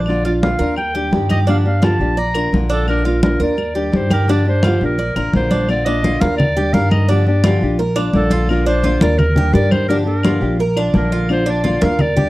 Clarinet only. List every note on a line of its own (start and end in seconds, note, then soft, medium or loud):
0.08 0.24 D5 medium
0.25 0.33 D5 medium
0.43 0.75 F5 loud
0.77 1.10 G5 loud
1.31 1.38 D#5 loud
1.49 1.57 F5 medium
1.66 1.85 F5 medium
1.84 2.20 A5 loud
2.18 2.53 A#5 loud
2.72 2.88 A4 loud
2.89 3.05 A#4 loud
3.07 3.23 A#4 medium
3.23 3.40 A#4 medium
3.43 3.97 D5 medium
3.96 4.12 C5 medium
4.13 4.32 A#4 medium
4.31 4.47 D5 medium
4.49 4.80 C5 medium
4.85 5.32 A#4 medium
5.36 5.67 C5 medium
5.70 5.87 D5 medium
5.85 6.22 D#5 loud
6.20 6.37 F5 medium
6.37 6.75 D5 loud
6.73 6.90 F5 loud
6.91 7.11 D#5 medium
7.10 7.26 D5 medium
7.27 7.76 D5 medium
8.16 8.48 A4 medium
8.49 8.66 A#4 medium
8.67 8.99 C5 loud
9.02 9.19 D5 loud
9.18 9.55 A#4 loud
9.54 9.73 D5 loud
9.71 9.88 C5 loud
9.89 9.97 A#4 medium
10.06 10.56 A#4 medium
10.97 11.28 A#4 medium
11.32 11.51 C5 medium
11.49 11.85 D5 medium
11.84 12.03 F5 medium
12.01 12.29 D5 loud